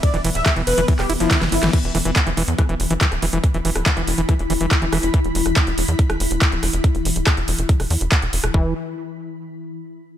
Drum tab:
CC |----------------|x---------------|----------------|----------------|
RD |x-x-x-x-x-x-x-x-|----------------|----------------|----------------|
HH |xxoxxxoxxooxxxox|xxoxxxoxxxoxxxox|xxoxxxoxxxoxxxox|xxoxxxoxxxoxxxox|
CP |----x----x--x---|----x-------x---|----x-------x---|----x-------x---|
SD |----r----r--oo-o|--r-----r----r--|---r----r-----r-|---r-----r----r-|
BD |o---o---o---o---|o---o---o---o---|o---o---o---o---|o---o---o---o---|

CC |----------------|----------------|
RD |----------------|----------------|
HH |xxoxxxoxxooxxxox|----------------|
CP |----x-------x---|----------------|
SD |----r----r-----r|----------------|
BD |o---o---o---o---|o---------------|